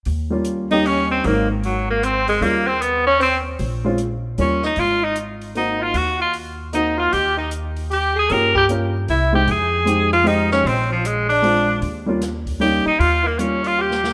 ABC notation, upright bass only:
X:1
M:3/4
L:1/8
Q:"Swing" 1/4=153
K:Ebmix
V:1 name="Upright bass" clef=bass
E,,6 | A,,,6 | E,,6 | B,,,4 E,,2 |
A,,,6 | E,,6 | E,,6 | G,,4 C,,2 |
F,,6 | B,,,6 | E,,4- E,, z | E,,6 |]